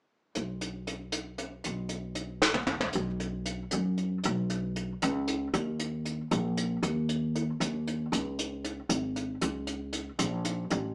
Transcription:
0.35 1.63 B1 medium
0.35 closed hi-hat medium
0.61 closed hi-hat medium
0.87 closed hi-hat medium
1.12 closed hi-hat medium
1.38 closed hi-hat soft
1.64 2.92 B1 medium
1.64 closed hi-hat medium
1.89 closed hi-hat medium
2.15 closed hi-hat medium
2.42 snare soft
2.54 high tom soft
2.67 mid tom medium
2.81 floor tom medium
2.93 3.62 B1 medium
2.93 closed hi-hat medium
3.20 closed hi-hat soft
3.46 closed hi-hat medium
3.71 4.17 F#2 medium
3.71 closed hi-hat medium
3.98 closed hi-hat soft
4.24 4.91 B1 medium
4.24 closed hi-hat medium
4.50 closed hi-hat medium
4.76 closed hi-hat soft
5.02 5.47 C#2 medium
5.02 closed hi-hat medium
5.28 closed hi-hat medium
5.54 6.20 D#2 medium
5.54 closed hi-hat medium
5.79 closed hi-hat medium
6.05 closed hi-hat soft
6.31 6.75 A#1 medium
6.31 closed hi-hat medium
6.57 closed hi-hat soft
6.83 7.49 D#2 medium
6.83 closed hi-hat medium
7.09 closed hi-hat soft
7.36 closed hi-hat medium
7.60 8.04 D#2 medium
7.60 closed hi-hat medium
7.88 closed hi-hat soft
8.12 8.78 C#2 medium
8.12 closed hi-hat medium
8.39 closed hi-hat medium
8.65 closed hi-hat soft
8.89 9.34 G#1 medium
8.89 closed hi-hat medium
9.16 closed hi-hat soft
9.41 10.08 C#2 medium
9.41 closed hi-hat medium
9.67 closed hi-hat medium
9.93 closed hi-hat medium
10.19 10.63 A#1 medium
10.19 closed hi-hat medium
10.45 closed hi-hat medium
10.70 10.95 A1 medium
10.70 closed hi-hat medium

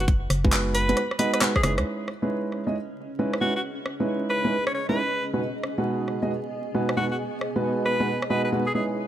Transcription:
0.00 0.28 F#1 medium
0.00 0.05 F#4 medium
0.00 closed hi-hat soft
0.08 kick loud
0.08 closed hi-hat medium
0.30 0.94 F#1 loud
0.30 cross-stick medium
0.30 open hi-hat loud
0.45 0.86 G#3 medium
0.45 0.86 B3 medium
0.45 0.86 D#4 medium
0.45 0.86 F#4 medium
0.45 0.86 B4 loud
0.45 kick loud
0.52 clap loud
0.52 closed hi-hat medium
0.75 1.08 B4 medium
0.75 cross-stick soft
0.75 open hi-hat loud
0.89 0.97 G#3 medium
0.89 0.97 B3 medium
0.89 0.97 D#4 medium
0.89 0.97 F#4 medium
0.89 0.97 B4 loud
0.89 closed hi-hat soft
0.97 cross-stick medium
0.97 closed hi-hat medium
1.11 cross-stick medium
1.19 1.39 G#3 medium
1.19 1.39 B3 medium
1.19 1.39 D#4 medium
1.19 1.39 F#4 medium
1.19 1.28 B4 medium
1.19 1.39 D#5 loud
1.19 open hi-hat loud
1.33 1.38 B4 medium
1.33 cross-stick medium
1.33 closed hi-hat medium
1.41 1.50 G#3 medium
1.41 1.50 B3 medium
1.41 1.50 D#4 medium
1.41 1.50 F#4 medium
1.41 1.50 B4 loud
1.41 cross-stick medium
1.41 clap loud
1.41 closed hi-hat medium
1.56 1.61 G#4 medium
1.56 kick medium
1.56 cross-stick medium
1.63 1.79 F#1 medium
1.63 2.08 G#3 medium
1.63 2.08 C#4 medium
1.63 2.08 D#4 medium
1.63 2.08 E4 medium
1.63 1.73 G#4 medium
1.63 2.08 B4 medium
1.63 cross-stick loud
1.63 open hi-hat loud
1.78 1.84 D#2 medium
1.78 cross-stick medium
1.78 closed hi-hat soft
1.86 6.45 C#4 medium
2.08 cross-stick medium
2.22 2.63 G#3 medium
2.22 2.63 C#4 medium
2.22 2.63 D#4 medium
2.22 2.63 E4 medium
2.22 2.63 B4 medium
2.36 9.07 G#4 medium
2.52 cross-stick soft
2.67 2.75 G#3 medium
2.67 2.75 C#4 medium
2.67 2.75 D#4 medium
2.67 2.75 E4 medium
2.67 2.75 D#5 medium
2.85 9.07 D#5 medium
3.19 3.34 G#3 medium
3.19 3.34 C#4 medium
3.19 3.34 D#4 medium
3.19 3.34 E4 medium
3.19 3.34 B4 medium
3.33 cross-stick medium
3.41 3.50 G#3 medium
3.41 3.50 C#4 medium
3.41 3.50 D#4 medium
3.41 3.50 E4 medium
3.41 3.51 F#4 medium
3.41 3.50 B4 medium
3.56 3.61 F#4 medium
3.86 cross-stick medium
4.00 4.41 G#3 medium
4.00 4.41 C#4 medium
4.00 4.41 D#4 medium
4.00 4.41 E4 medium
4.00 4.41 B4 medium
4.30 4.64 B4 medium
4.30 cross-stick soft
4.44 4.52 G#3 medium
4.44 4.52 C#4 medium
4.44 4.52 D#4 medium
4.44 4.52 E4 medium
4.44 4.52 B4 medium
4.67 4.72 C#5 medium
4.67 cross-stick medium
4.75 4.84 C#5 medium
4.89 4.97 G#3 medium
4.89 4.97 C#4 medium
4.89 4.97 D#4 medium
4.89 4.97 E4 medium
4.89 5.25 B4 medium
4.89 4.97 B4 loud
5.19 9.07 B3 medium
5.34 5.38 B2 medium
5.34 5.38 G#3 medium
5.34 5.38 B3 medium
5.34 5.38 D#4 medium
5.34 5.38 F#4 medium
5.34 5.38 B4 medium
5.55 9.07 G#5 medium
5.63 cross-stick medium
5.78 6.19 B2 medium
5.78 6.19 G#3 medium
5.78 6.19 B3 medium
5.78 6.19 D#4 medium
5.78 6.19 F#4 medium
5.78 6.19 B4 medium
6.08 cross-stick soft
6.22 6.30 B2 medium
6.22 6.30 G#3 medium
6.22 6.30 B3 medium
6.22 6.30 D#4 medium
6.22 6.30 F#4 medium
6.22 6.30 D#5 medium
6.75 6.89 B2 medium
6.75 6.89 G#3 medium
6.75 6.89 B3 medium
6.75 6.89 D#4 medium
6.75 6.89 F#4 medium
6.75 6.89 B4 medium
6.89 cross-stick medium
6.97 7.06 B2 medium
6.97 7.06 G#3 medium
6.97 7.06 B3 medium
6.97 7.06 D#4 medium
6.97 7.06 F#4 medium
6.97 7.06 B4 medium
7.11 7.16 F#4 medium
7.41 cross-stick medium
7.56 7.97 B2 medium
7.56 7.97 G#3 medium
7.56 7.97 B3 medium
7.56 7.97 D#4 medium
7.56 7.97 F#4 medium
7.56 7.97 B4 medium
7.86 8.20 B4 medium
7.86 cross-stick soft
8.00 8.08 B2 medium
8.00 8.08 G#3 medium
8.00 8.08 B3 medium
8.00 8.08 D#4 medium
8.00 8.08 F#4 medium
8.00 8.08 B4 medium
8.22 cross-stick medium
8.30 8.50 B2 medium
8.30 8.50 G#3 medium
8.30 8.50 B3 medium
8.30 8.50 D#4 medium
8.30 8.51 F#4 medium
8.30 8.39 B4 medium
8.30 8.50 D#5 medium
8.45 8.50 B4 medium
8.52 8.62 B2 medium
8.52 8.62 G#3 medium
8.52 8.61 B3 medium
8.52 8.61 D#4 medium
8.52 8.62 F#4 medium
8.52 8.62 B4 medium
8.67 8.72 G#4 medium
8.75 9.07 G#3 medium
8.75 9.07 C#4 medium
8.75 9.07 D#4 medium
8.75 9.07 E4 medium
8.75 8.84 G#4 medium
8.75 9.07 B4 medium
8.97 9.07 C#4 medium

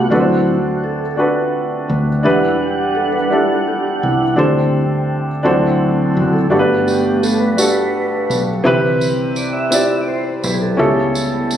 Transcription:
0.00 0.10 D4 medium
0.00 5.40 D4 medium
0.00 0.11 F#4 medium
0.00 0.13 G4 medium
0.00 0.12 A4 medium
0.00 0.13 B4 medium
0.05 0.11 F4 medium
0.10 1.85 D2 medium
0.10 1.14 D3 medium
0.10 0.58 F#3 soft
0.10 2.23 A3 medium
0.10 0.59 C4 soft
0.10 2.23 C4 medium
0.10 1.01 D4 medium
0.10 0.59 E4 soft
0.10 1.02 F#4 medium
0.10 0.46 F#4 medium
0.10 1.02 A4 medium
0.10 0.19 B4 medium
0.19 1.06 C5 medium
0.48 0.84 F#4 medium
0.84 1.16 A4 medium
1.17 2.08 D4 medium
1.17 2.08 F#4 medium
1.17 2.09 A4 medium
1.17 2.09 B4 medium
1.89 2.22 D2 medium
2.23 3.99 E1 medium
2.23 3.27 E3 medium
2.23 4.36 G3 medium
2.23 4.34 G3 soft
2.23 4.36 B3 medium
2.23 3.14 D4 medium
2.23 4.34 D4 soft
2.23 3.15 E4 medium
2.23 4.36 E4 medium
2.23 2.58 E4 medium
2.23 3.15 G4 medium
2.23 3.16 B4 medium
2.23 4.35 F#5 medium
2.61 2.97 G4 medium
2.95 3.14 A4 medium
3.13 3.31 B4 medium
3.30 4.21 D4 medium
3.30 4.22 E4 medium
3.30 4.22 G4 medium
3.30 3.68 A4 medium
3.30 4.23 A4 medium
3.67 4.04 G4 medium
4.03 4.36 C2 medium
4.03 4.36 E4 medium
4.36 5.41 D2 medium
4.36 5.41 D3 medium
4.36 4.85 G3 soft
4.36 6.49 A3 medium
4.36 6.49 C4 medium
4.36 4.85 C4 soft
4.36 5.28 D4 medium
4.36 4.85 E4 medium
4.36 5.28 G4 medium
4.36 5.43 G4 medium
4.36 5.29 A4 medium
4.36 5.29 C5 medium
5.43 6.18 D2 medium
5.43 6.47 D3 medium
5.43 6.47 F#3 medium
5.43 6.47 C4 soft
5.43 6.34 D4 medium
5.43 8.61 D4 medium
5.43 6.48 E4 medium
5.43 6.35 F#4 medium
5.43 8.61 A4 medium
5.43 6.35 A4 medium
5.43 6.36 C5 medium
6.15 6.49 F#1 medium
6.15 6.34 F#4 medium
6.33 6.89 A4 loud
6.50 8.26 G1 medium
6.50 7.54 G2 medium
6.50 10.74 G3 medium
6.50 7.54 G3 soft
6.50 7.54 A3 soft
6.50 7.55 B3 medium
6.50 7.41 D4 medium
6.50 7.42 F#4 medium
6.50 7.42 G4 medium
6.50 6.59 A4 medium
6.59 7.46 B4 medium
6.87 7.24 G4 medium
6.87 tambourine medium
7.23 7.42 A4 medium
7.23 tambourine medium
7.40 8.43 B4 medium
7.57 8.48 D4 medium
7.57 8.49 F#4 medium
7.57 8.49 G4 medium
7.57 8.50 A4 medium
7.57 tambourine medium
8.30 8.63 B1 medium
8.30 tambourine soft
8.63 10.39 C2 loud
8.63 9.68 C3 medium
8.63 9.12 D3 medium
8.63 9.13 E3 soft
8.63 10.76 C4 medium
8.63 9.55 C4 medium
8.63 10.76 E4 medium
8.63 9.55 E4 medium
8.63 9.56 G4 medium
8.63 9.56 B4 medium
8.63 9.13 B4 medium
9.01 tambourine medium
9.36 9.55 D5 loud
9.36 tambourine medium
9.53 10.01 E5 loud
9.71 10.62 C4 medium
9.71 10.62 E4 medium
9.71 10.63 G4 medium
9.71 10.63 D5 medium
9.71 tambourine loud
10.01 10.08 D5 medium
10.08 10.24 C5 medium
10.44 10.76 B1 medium
10.44 10.54 B4 medium
10.44 tambourine medium
10.54 10.61 G#4 medium
10.62 11.57 A4 medium
10.77 11.57 C#2 medium
10.77 11.57 C#3 medium
10.77 11.57 G3 medium
10.77 11.57 G3 soft
10.77 11.57 A3 medium
10.77 11.57 B3 medium
10.77 11.57 C#4 medium
10.77 11.57 E4 medium
10.77 11.57 G4 medium
10.77 11.57 A4 medium
11.15 tambourine medium
11.51 tambourine medium

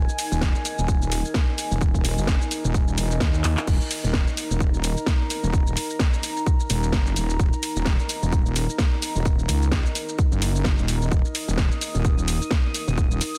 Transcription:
0.00 13.38 D#4 medium
0.00 13.38 A#4 medium
0.00 3.66 G#5 medium
0.09 shaker soft
0.19 open hi-hat loud
0.19 shaker medium
0.32 0.53 D#1 loud
0.32 shaker soft
0.41 kick loud
0.41 snare loud
0.41 shaker soft
0.55 shaker soft
0.65 open hi-hat medium
0.65 shaker medium
0.78 1.23 D#1 loud
0.78 shaker soft
0.88 kick loud
0.88 shaker soft
1.02 shaker soft
1.12 open hi-hat loud
1.12 shaker medium
1.25 shaker soft
1.34 kick loud
1.34 snare loud
1.34 shaker soft
1.58 open hi-hat medium
1.58 shaker medium
1.71 2.03 D#1 loud
1.71 shaker soft
1.81 kick loud
1.81 shaker soft
1.94 kick medium
1.94 shaker soft
2.05 2.16 D#1 loud
2.05 open hi-hat loud
2.05 shaker medium
2.18 2.39 F#1 loud
2.18 shaker soft
2.27 kick loud
2.27 snare loud
2.27 shaker soft
2.41 shaker soft
2.51 open hi-hat medium
2.51 shaker medium
2.64 2.96 D#1 loud
2.64 shaker soft
2.74 kick loud
2.74 shaker soft
2.88 shaker soft
2.98 3.19 E1 loud
2.98 open hi-hat loud
2.98 shaker medium
3.11 shaker soft
3.20 3.43 D#2 loud
3.20 kick loud
3.20 snare loud
3.20 shaker soft
3.34 shaker soft
3.44 3.55 D#2 loud
3.44 clap medium
3.44 open hi-hat medium
3.44 shaker medium
3.57 clap loud
3.57 shaker soft
3.67 3.78 D#1 loud
3.67 11.10 A#5 medium
3.67 kick loud
3.67 crash medium
3.67 shaker soft
3.81 shaker soft
3.91 open hi-hat loud
3.91 shaker medium
4.04 4.25 D#1 loud
4.04 shaker soft
4.13 kick loud
4.13 snare loud
4.13 shaker soft
4.27 shaker soft
4.37 open hi-hat medium
4.37 shaker medium
4.50 4.95 D#1 loud
4.50 shaker soft
4.60 kick loud
4.60 shaker soft
4.74 shaker soft
4.84 open hi-hat loud
4.84 shaker medium
4.97 shaker soft
5.06 kick loud
5.06 snare loud
5.06 shaker soft
5.30 open hi-hat medium
5.30 shaker medium
5.43 5.75 D#1 loud
5.43 shaker soft
5.53 kick loud
5.53 shaker soft
5.67 shaker soft
5.77 open hi-hat loud
5.77 shaker medium
5.90 shaker soft
5.99 kick loud
5.99 snare loud
5.99 shaker soft
6.13 shaker soft
6.23 open hi-hat medium
6.23 shaker medium
6.37 shaker soft
6.47 kick loud
6.47 shaker soft
6.60 shaker soft
6.70 6.91 D#1 medium
6.70 open hi-hat loud
6.70 shaker medium
6.83 shaker soft
6.92 7.15 F#1 medium
6.92 kick loud
6.92 snare loud
6.92 shaker soft
7.06 shaker soft
7.16 7.38 D#1 loud
7.16 open hi-hat medium
7.16 shaker medium
7.30 shaker soft
7.40 7.50 D#1 loud
7.40 kick loud
7.40 shaker soft
7.53 shaker soft
7.63 open hi-hat loud
7.63 shaker medium
7.76 7.97 D#1 loud
7.76 shaker soft
7.85 kick loud
7.85 snare loud
7.85 shaker soft
7.99 shaker soft
8.09 open hi-hat loud
8.09 shaker medium
8.22 8.67 D#1 loud
8.22 shaker soft
8.33 kick loud
8.33 shaker soft
8.46 shaker soft
8.56 open hi-hat loud
8.56 shaker medium
8.69 shaker soft
8.78 kick loud
8.78 snare loud
8.78 shaker soft
9.02 open hi-hat loud
9.02 shaker medium
9.15 9.47 D#1 loud
9.15 shaker soft
9.26 kick loud
9.26 shaker soft
9.39 shaker soft
9.49 9.83 C#2 medium
9.49 open hi-hat loud
9.49 shaker medium
9.62 shaker soft
9.72 kick loud
9.72 snare loud
9.72 shaker soft
9.86 shaker soft
9.95 open hi-hat medium
9.95 shaker medium
10.09 shaker soft
10.19 kick loud
10.19 shaker soft
10.32 10.76 F#1 loud
10.32 shaker soft
10.42 open hi-hat loud
10.42 shaker medium
10.55 shaker soft
10.65 kick loud
10.65 snare loud
10.65 shaker soft
10.78 11.10 D#1 medium
10.78 shaker soft
10.88 open hi-hat medium
10.88 shaker medium
11.02 shaker soft
11.12 11.23 D#1 medium
11.12 13.38 D#6 medium
11.12 kick loud
11.12 shaker soft
11.25 shaker soft
11.35 open hi-hat loud
11.35 shaker medium
11.48 11.69 D#1 loud
11.48 shaker soft
11.58 kick loud
11.58 snare loud
11.58 shaker soft
11.72 shaker soft
11.81 open hi-hat medium
11.81 shaker medium
11.94 12.39 D#1 loud
11.94 shaker soft
12.05 kick loud
12.05 shaker soft
12.18 shaker soft
12.28 open hi-hat loud
12.28 shaker medium
12.41 shaker soft
12.51 kick loud
12.51 snare loud
12.51 shaker soft
12.74 open hi-hat medium
12.74 shaker medium
12.88 13.19 D#1 loud
12.88 shaker soft
12.98 kick loud
12.98 shaker soft
13.11 shaker soft
13.21 open hi-hat loud
13.21 shaker medium
13.34 shaker soft

